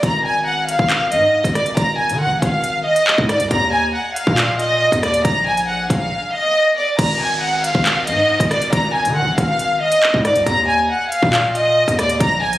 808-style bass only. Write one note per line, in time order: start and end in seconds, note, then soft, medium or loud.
0.03 0.76 G#1 loud
0.79 1.13 G#1 loud
1.12 1.43 G#2 medium
1.44 1.76 G#1 loud
1.77 2.11 G#1 loud
2.10 2.27 D#3 loud
2.26 2.41 G#1 loud
2.42 2.84 G#1 loud
3.18 3.42 G#2 loud
3.40 3.50 B1 loud
3.51 3.93 D#2 loud
4.27 4.90 A#2 loud
4.92 5.23 D#2 loud
5.25 5.87 A#1 loud
5.90 6.11 A#1 loud
6.99 7.72 G#1 loud
7.75 8.09 G#1 loud
8.07 8.38 G#2 loud
8.40 8.71 G#1 loud
8.73 9.07 G#1 loud
9.05 9.23 D#3 loud
9.21 9.37 G#1 loud
9.38 9.80 G#1 loud
10.14 10.37 G#2 loud
10.36 10.46 B1 loud
10.46 10.88 D#2 loud
11.23 11.85 A#2 loud
11.88 12.19 D#2 loud
12.20 12.58 A#1 loud